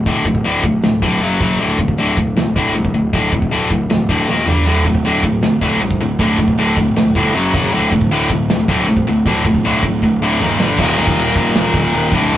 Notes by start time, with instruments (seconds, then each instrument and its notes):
0.06 picked electric bass D1, distorted electric guitar D2 A2 D3, kick, open hi-hat
0.25 picked electric bass D1, distorted electric guitar D2 A2, kick
0.35 kick
0.44 picked electric bass D1, distorted electric guitar D2 A2 D3, open hi-hat
0.64 picked electric bass D1, distorted electric guitar D2 A2, kick
0.83 picked electric bass D1, distorted electric guitar D2 A2, snare, open hi-hat
1.02 picked electric bass D1, distorted electric guitar D2 A2 D3, kick
1.22 picked electric bass F#1, distorted electric guitar F#2 C#3 F#3, open hi-hat
1.40 picked electric bass F#1, distorted electric guitar F#2 C#3 F#3, kick
1.60 picked electric bass D1, distorted electric guitar D2 A2 D3, open hi-hat
1.78 picked electric bass D1, distorted electric guitar D2 A2, kick
1.88 kick
1.98 picked electric bass D1, distorted electric guitar D2 A2 D3, open hi-hat
2.17 picked electric bass D1, distorted electric guitar D2 A2, kick
2.37 picked electric bass D1, distorted electric guitar D2 A2, snare, open hi-hat
2.56 picked electric bass D1, distorted electric guitar D2 A2 D3, kick
2.75 picked electric bass C2, distorted electric guitar D2 A2, open hi-hat
2.85 kick
2.94 picked electric bass D1, distorted electric guitar D2 A2
3.13 picked electric bass D1, distorted electric guitar D2 A2 D3, kick, open hi-hat
3.32 picked electric bass D1, distorted electric guitar D2 A2, kick
3.42 kick
3.51 picked electric bass D1, distorted electric guitar D2 A2 D3, open hi-hat
3.71 picked electric bass D1, distorted electric guitar D2 A2, kick
3.89 picked electric bass D1, distorted electric guitar D2 A2, snare, open hi-hat
4.09 picked electric bass D1, distorted electric guitar D2 A2 D3, kick
4.29 picked electric bass D#1, distorted electric guitar D#2 A#2 D#3, snare
4.46 picked electric bass G1, distorted electric guitar G2 D3 G3, floor tom
4.66 picked electric bass D1, distorted electric guitar D2 A2 D3, open hi-hat
4.85 picked electric bass D1, distorted electric guitar D2 A2, kick
4.94 kick
5.04 picked electric bass D1, distorted electric guitar D2 A2 D3, open hi-hat
5.23 picked electric bass D1, distorted electric guitar D2 A2, kick
5.42 picked electric bass D1, distorted electric guitar D2 A2, snare, open hi-hat
5.61 picked electric bass D1, distorted electric guitar D2 A2 D3, kick
5.81 picked electric bass C2, distorted electric guitar D2 A2, open hi-hat
5.91 kick
6.00 picked electric bass D1, distorted electric guitar D2 A2
6.19 picked electric bass D1, distorted electric guitar D2 A2 D3, kick, open hi-hat
6.38 picked electric bass D1, distorted electric guitar D2 A2, kick
6.48 kick
6.58 picked electric bass D1, distorted electric guitar D2 A2 D3, open hi-hat
6.76 picked electric bass D1, distorted electric guitar D2 A2, kick
6.96 picked electric bass D1, distorted electric guitar D2 A2, snare, open hi-hat
7.15 picked electric bass G1, distorted electric guitar D2 A2 D3, kick
7.35 picked electric bass F#1, distorted electric guitar F#2 C#3 F#3, open hi-hat
7.53 picked electric bass F#1, distorted electric guitar F#2 C#3 F#3, kick
7.73 picked electric bass D1, distorted electric guitar D2 A2 D3, open hi-hat
7.92 picked electric bass D1, distorted electric guitar D2 A2, kick
8.01 kick
8.11 picked electric bass D1, distorted electric guitar D2 A2 D3, open hi-hat
8.30 picked electric bass D1, distorted electric guitar D2 A2, kick
8.49 picked electric bass D1, distorted electric guitar D2 A2, snare, open hi-hat
8.68 picked electric bass D1, distorted electric guitar D2 A2 D3, kick
8.87 picked electric bass C2, distorted electric guitar D2 A2, open hi-hat
8.97 kick
9.07 picked electric bass D1, distorted electric guitar D2 A2
9.25 picked electric bass D1, distorted electric guitar D2 A2 D3, kick, open hi-hat
9.45 picked electric bass D1, distorted electric guitar D2 A2, kick
9.54 kick
9.64 picked electric bass D1, distorted electric guitar D2 A2 D3, open hi-hat
9.83 picked electric bass D1, distorted electric guitar D2 A2, kick
10.02 picked electric bass D1, distorted electric guitar D2 A2, kick
10.21 picked electric bass D1, distorted electric guitar D2 A2 D3
10.39 picked electric bass D#1, distorted electric guitar D#2 A#2 D#3, mid tom
10.60 picked electric bass G1, distorted electric guitar G2 D3 G3, snare
10.78 picked electric bass D#1, distorted electric guitar D#2 A#2 D#3, kick, crash, china
10.98 picked electric bass D#1
11.07 kick
11.16 picked electric bass D#1, china
11.35 picked electric bass D#1, distorted electric guitar D#2 A#2 D#3, kick
11.55 picked electric bass D#1, snare, china
11.74 picked electric bass D#1, kick
11.93 picked electric bass D#1, distorted electric guitar D#2 A#2 D#3, china
12.12 picked electric bass D1, distorted electric guitar D2 A2 D3, kick
12.31 picked electric bass D1, china